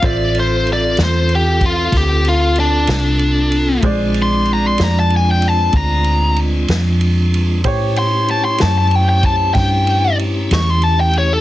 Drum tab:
RD |xxxxxxxxxxxx|xxxxxxxxxxxx|xxxxxxxxxxxx|
SD |---o--o--o--|---o-----o--|---o--o--o--|
BD |o----oo-----|o-----o-----|o----oo-----|